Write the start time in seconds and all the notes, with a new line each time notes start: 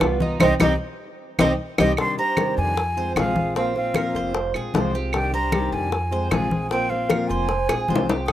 Already playing: B3
0.00 C2 G3 B3 F4, high bongo, low bongo, high conga, claves
0.20 B3 D#4 F4, high conga
0.40 C2 G3 C4 D#4 G4 D#5, low bongo, high conga, claves
0.60 C2 G3 C4 D#4 G4 D#5, low bongo, high conga, claves
1.39 C2 G3 C4 D#4 G4 D#5, low bongo, high conga, claves
1.78 C2 G3 C4 D#4 G4 D#5, low bongo, high conga, claves
1.97 C3 D#3 G3 D4 G4 C6, high bongo, high conga, claves
2.18 G3 G4 C5 A#5, high conga
2.37 C3 D#3 G3 D4 G4, high bongo, high conga, claves
2.57 F2 G#5, high conga
2.77 muted steel-string acoustic guitar stroke, high bongo, high conga
2.97 G#3 C4 F4 C5, high conga
3.16 A#1 C3 F3 G#3 C4 F4 G#4 F5, high bongo, low bongo, high conga, claves
3.36 G#3 C4 F4, high conga
3.55 F3 A#3 C4 F4 F5, high bongo, high conga
3.75 A#3 C4 F4 F5, high bongo, high conga
3.94 F3 A#3 C4 F4 A#4, high bongo, high conga, claves
4.15 F1 C5, high bongo, high conga
4.35 muted steel-string acoustic guitar stroke, high bongo, high conga
4.54 A#1 G#3 C4 F4 G#4, high bongo, high conga, claves
4.74 C2 C3 F3 G#3 C4 F4 C5, high bongo, low bongo, high conga
4.94 G#3 C4 F4 G4
5.13 C3 D#3 G3 D4 G4 G5, high bongo, high conga, claves
5.33 G3 D4 G4 C5 A#5, high conga
5.52 C3 D#3 G3 D4 G4, high bongo, high conga, claves
5.72 F2 G#5, high conga
5.92 muted steel-string acoustic guitar stroke, high bongo, high conga
6.11 G#3 C4 F4 C5, high conga
6.31 A#1 C3 F3 G#3 C4 F4 G#4 G#5, high bongo, low bongo, high conga, claves
6.51 G#3 C4 F4, high conga
6.70 F3 A#3 C4 F4 G5, high bongo, high conga
6.90 A#3 C4 F4 F5, high bongo, high conga
7.09 F3 A#3 C4 F4 A#4, high bongo, high conga, claves
7.28 F1 C5 G#5, high bongo, high conga
7.49 muted steel-string acoustic guitar stroke, high bongo, high conga
7.68 A#1 G#3 C4 F4 G#4, high bongo, high conga, claves
7.88 C2 C3 F3 G#3 C4 F4 C5, high conga
7.95 low bongo
8.08 G#3 C4 F4 G4, low bongo
8.27 C3 D#3 G3 D4 D#6, high bongo, high conga, claves